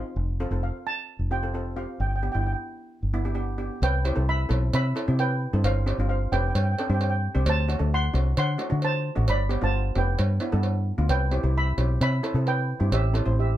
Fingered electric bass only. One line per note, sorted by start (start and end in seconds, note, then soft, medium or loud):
0.16 0.45 F1 medium
0.51 0.70 F1 medium
1.19 1.85 F1 medium
2.00 2.28 G1 medium
2.35 2.53 G1 medium
3.03 3.68 G1 medium
3.82 4.10 C2 loud
4.17 4.45 C2 medium
4.50 4.69 B1 medium
4.73 4.92 C3 medium
5.08 5.46 C3 medium
5.53 5.62 G2 medium
5.64 5.92 G1 loud
5.98 6.26 G1 medium
6.32 6.51 F1 medium
6.55 6.74 G2 medium
6.89 7.27 G2 medium
7.35 7.44 C2 medium
7.46 7.75 D2 loud
7.80 8.08 D2 medium
8.14 8.33 C2 medium
8.37 8.56 D3 medium
8.72 9.09 D3 medium
9.17 9.26 A1 medium
9.28 9.57 G1 loud
9.62 9.90 G1 medium
9.96 10.15 F1 medium
10.19 10.38 G2 medium
10.53 10.91 G2 medium
10.98 11.08 D2 medium
11.09 11.38 C2 medium
11.44 11.72 C2 medium
11.78 11.97 B1 medium
12.01 12.20 C3 medium
12.34 12.72 C3 medium
12.81 12.90 G2 medium
12.92 13.20 A1 loud
13.26 13.54 A1 medium